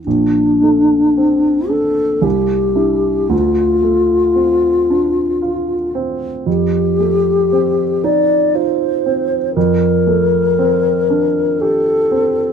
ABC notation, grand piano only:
X:1
M:3/4
L:1/8
Q:1/4=57
K:Bb
V:1 name="Grand piano"
B,,, A, C D C,, [D=E] | D,, A, C D F C | F,, A, C E F C | F,, A, C D G C |]